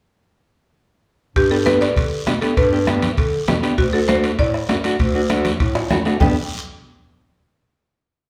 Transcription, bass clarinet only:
1.36 G2
1.97 D3
2.27 B2
2.57 G2
3.18 D3
3.48 B2
3.78 D2
4.39 A2
4.69 F#2
4.99 D2
5.60 A2
5.91 F#2
6.20 G2

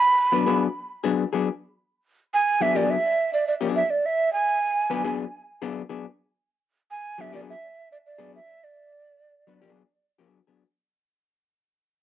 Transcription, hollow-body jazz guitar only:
0.32 F#3 B3 D4 B4
0.46 F#3 B3 D4 G#4
1.04 F#3 B3 D4 G#4
1.33 F#3 B3 D4 G#4
2.60 F#3 B3 D4 G#4
2.75 F#3 B3 D4 G#4
3.61 F#3 B3 D4 G#4
4.90 F#3 B3 D4 B4
5.04 F#3 B3 D4 G#4
5.62 F#3 B3 D4 G#4
5.89 F#3 B3 D4 G#4
7.18 F#3 B3 D4 G#4
7.32 F#3 B3 D4 G#4
8.19 F#3 B3 D4 G#4
9.47 F#3 B3 D4 B4
9.62 F#3 B3 D4 G#4
10.19 F#3 B3 D4 G#4
10.47 F#3 B3 D4 G#4

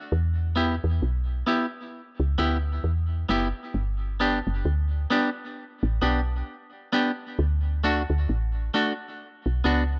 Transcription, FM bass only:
0.12 E2
0.84 E2
1.02 B1
2.20 C#2
2.39 D2
2.84 E2
3.29 F#1
3.74 G1
4.47 F#1
4.65 D2
5.83 A1
6.02 B1
7.39 D2
8.10 D2
8.29 A1
9.46 B1
9.65 C#2

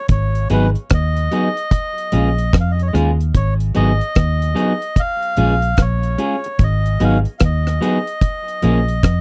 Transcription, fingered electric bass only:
0.10 G#1
0.51 G#1
0.91 D#2
2.13 A#1
2.54 F2
2.95 D#2
3.35 G#1
3.77 G#1
4.17 D#2
5.38 A#1
5.78 A#1
6.60 G#1
7.01 G#1
7.42 D#2
8.64 A#1
9.04 F2

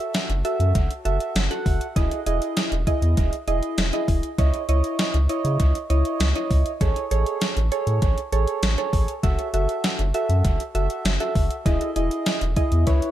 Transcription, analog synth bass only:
0.29 F#1
0.60 F#2
0.75 F#1
1.05 F#1
1.35 F#1
1.66 F#1
1.96 E1
2.26 E1
2.72 E1
3.02 E2
3.17 E1
3.48 E1
3.78 E1
4.08 E1
4.38 C#2
4.69 C#2
5.14 C#2
5.45 C#3
5.60 C#2
5.90 C#2
6.20 C#2
6.51 C#2
6.81 A1
7.11 A1
7.57 A1
7.87 A2
8.02 A1
8.32 A1
8.63 A1
8.93 A1
9.23 F#1
9.54 F#1
9.99 F#1
10.29 F#2
10.45 F#1
10.75 F#1
11.05 F#1
11.35 F#1
11.66 E1
11.96 E1
12.41 E1
12.72 E2
12.87 C#2

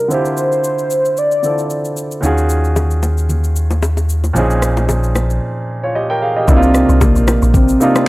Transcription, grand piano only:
Already playing: C3 G3 D4 D#4 F4 A#4
0.08 D3 C4 E4
0.13 F4 G4
1.43 D3 C4 E4 F4 A4
2.21 D#3 C#4 F4
2.25 F#4 G#4
4.33 A#2 F3 C4 C#4
4.38 D#4 G#4
5.83 F4 C#5
5.95 G4 D#5
6.10 A#4 G5
6.22 G#4 F5
6.36 G4 D#5
6.47 C3 A#3 D4 D#4 E4
6.56 F4
7.80 C3 A#3 D4 D#4 F4

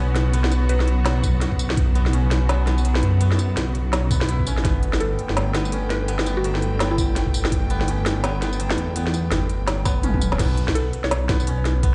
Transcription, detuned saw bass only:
Already playing: B1
0.69 B1
0.98 B1
2.13 B1
2.42 B1
3.03 F#2
3.57 B1
3.85 B1
4.11 B1
4.47 A1
4.65 G1
5.29 G1
6.45 G1
6.73 G1
7.88 G1
8.16 G1
8.78 E2
9.31 G1
9.60 G1
9.86 G1
10.21 D1
10.39 B1
11.04 B1

